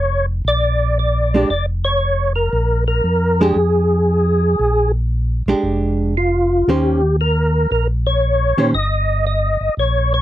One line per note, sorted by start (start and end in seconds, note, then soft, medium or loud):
0.00 0.42 F1 medium
0.00 0.26 C#5 medium
0.45 1.45 A#1 medium
0.45 0.98 D5 loud
0.99 1.49 D5 medium
1.34 1.49 G#3 medium
1.34 1.49 D4 medium
1.34 1.49 G4 medium
1.49 2.49 F1 medium
1.49 1.66 D5 medium
1.85 2.33 C#5 medium
2.36 2.84 A#4 medium
2.53 3.01 A#1 medium
2.88 3.41 A#4 medium
3.04 3.53 F2 medium
3.40 3.56 G#3 medium
3.40 3.56 D4 medium
3.40 3.56 G4 medium
3.40 4.92 G#4 medium
3.56 4.56 F2 medium
4.59 5.43 A#1 medium
5.46 5.55 A#1 soft
5.46 6.13 G#3 medium
5.46 6.14 D4 medium
5.46 6.14 G4 medium
5.63 6.63 F1 medium
6.17 6.70 F4 medium
6.67 7.67 D#2 medium
6.67 7.00 D#3 medium
6.67 7.00 C#4 medium
6.67 7.16 G4 medium
6.67 7.00 G4 medium
6.67 7.00 C5 medium
7.21 7.71 A#4 medium
7.71 8.54 A#1 medium
7.71 7.87 A#4 medium
8.06 8.71 C#5 loud
8.57 8.73 A#2 medium
8.57 8.73 D#3 medium
8.57 8.73 C#4 medium
8.57 8.73 G4 medium
8.57 8.74 C5 medium
8.74 9.57 G1 medium
8.74 9.25 D#5 medium
9.27 9.75 D#5 medium
9.61 9.69 G1 soft
9.77 10.22 A#1 medium
9.77 10.13 C#5 medium
10.14 10.22 C#5 loud